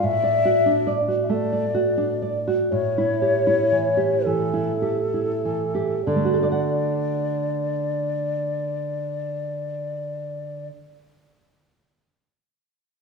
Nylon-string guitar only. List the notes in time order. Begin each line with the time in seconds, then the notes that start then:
0.03 A2
0.23 D5
0.45 F#4
0.66 D4
0.87 D5
1.08 F#4
1.29 A3
1.52 D5
1.74 F#4
1.97 D4
2.22 D5
2.47 F#4
2.72 A2
2.98 E4
3.22 G4
3.47 E4
3.72 E3
3.97 G4
4.26 E3
4.53 E4
4.82 G4
5.14 E4
5.45 E3
5.75 G4
6.07 D3
6.16 A3
6.25 F#4
6.34 A4
6.43 D5
6.52 F#5